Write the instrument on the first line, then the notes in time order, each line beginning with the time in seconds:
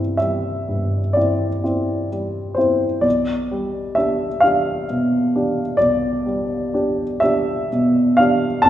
grand piano
Already playing: C2 G2 C4 E4 E5
0.17 G3 E5
0.69 G2
1.13 C4 E4 D5
1.64 C4 E4
2.12 G3
2.55 C4 E4 C5
3.01 B1 D5
3.51 G3
3.95 D4 G4 E5
4.40 D4 G4 F5
4.90 B2
5.35 D4 G4
5.77 B1 D5
6.26 G3
6.74 D4 G4
7.20 D4 G4 E5
7.72 B2
8.17 D4 G4 F5
8.62 C2 A5